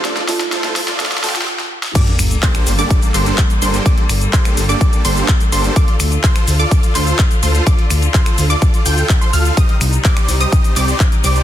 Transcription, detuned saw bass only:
\new Staff \with { instrumentName = "Detuned saw bass" } { \clef bass \time 4/4 \key g \minor \tempo 4 = 126 r1 | r8 g,,8 r8 g,,8 r8 g,,8 r8 g,,8 | r8 g,,8 r8 g,,8 r8 g,,8 r8 g,,8 | r8 d,8 r8 d,8 r8 d,8 r8 d,8 |
r8 d,8 r8 d,8 r8 d,8 r8 d,8 | r8 c,8 r8 c,8 r8 c,8 r8 c,8 | }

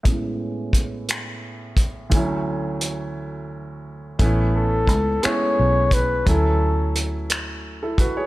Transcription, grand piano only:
\new Staff \with { instrumentName = "Grand piano" } { \time 6/8 \key a \major \tempo 4. = 58 <a, gis b cis' e'>2. | <d, e fis a cis' e'>2. | <a b cis' e'>4~ <a b cis' e'>16 r16 <gis b cis' e'>4~ <gis b cis' e'>16 r16 | <fis a cis' e'>4~ <fis a cis' e'>16 r4 <e' a'>16 <fis' b'>16 <gis' cis''>16 | }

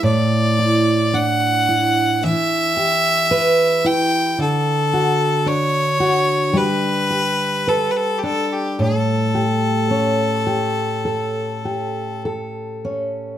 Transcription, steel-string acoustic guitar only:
\new Staff \with { instrumentName = "Steel-string acoustic guitar" } { \time 4/4 \key a \mixolydian \tempo 4 = 54 a,8 e'8 d'8 e'8 e8 g'8 b'8 e'8 | d8 fis'8 d'8 fis'8 g8 g'8 b'8 d'8 | a,8 g'8 cis'8 g'8 a'8 g'8 a'8 cis'8 | }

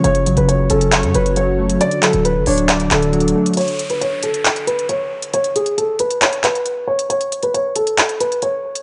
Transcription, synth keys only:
\new Staff \with { instrumentName = "Synth keys" } { \clef bass \time 4/4 \key d \lydian \tempo 4 = 136 cis8 fis4 cis'8 cis''8 cis8 fis8 a8 | d8 fis4 d'8 d''8 d8 fis8 a8 | r1 | r1 |
r1 | }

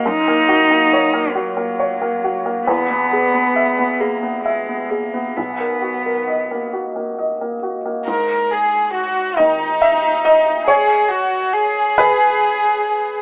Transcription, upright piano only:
<<
  \new Staff \with { instrumentName = "Upright piano" } { \time 6/8 \key gis \minor \tempo 4. = 46 r2. | r2. | r2. | r4. dis''8 e''8 dis''8 |
cis''4. b'4. | }
  \new Staff \with { instrumentName = "Upright piano" } { \time 6/8 \key gis \minor fis,16 ais16 fis'16 ais16 cis''16 ais16 fis'16 ais16 cis''16 ais16 fis'16 ais16 | e,16 b16 gis'16 b16 e''16 b16 gis'16 b16 e''16 b16 gis'16 b16 | b,,16 ais'16 fis'16 ais'16 dis''16 ais16 fis'16 ais16 dis''16 ais16 fis'16 ais16 | gis,4. dis4.~ |
dis2. | }
>>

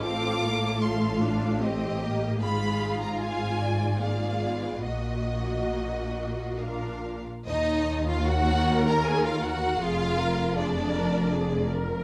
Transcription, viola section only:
\new Staff \with { instrumentName = "Viola section" } { \time 3/4 \key ees \minor \tempo 4 = 76 << { f'4 f'4 g'4 | aes'4 f'4 f'4 | ges'2 f'8. r16 | r4 bes'2 |
aes'8 bes'8 aes'8 bes'8 aes'8 bes'8 | } \\ { c'8 bes8 a8 d'8 c'8 bes8 | aes4 aes4 bes8 ces'8 | bes2 d'8. r16 | r2. |
r2. | } >> }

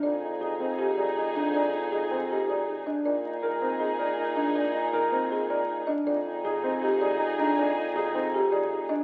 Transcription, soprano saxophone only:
\new Staff \with { instrumentName = "Soprano saxophone" } { \time 4/4 \key f \dorian \tempo 4 = 159 ees'8 ees'8 ees'8 ees'8 ees'8 ees'8 ees'8 ees'8 | ees'8 ees'8 ees'8 ees'8 ees'8 ees'8 ees'8 r8 | ees'8 ees'8 ees'8 ees'8 ees'8 ees'8 ees'8 ees'8 | ees'8 ees'8 ees'8 ees'8 ees'8 ees'8 ees'8 r8 |
ees'8 ees'8 ees'8 ees'8 ees'8 ees'8 ees'8 ees'8 | ees'8 ees'8 ees'8 ees'8 ees'8 ees'8 ees'8 r8 | }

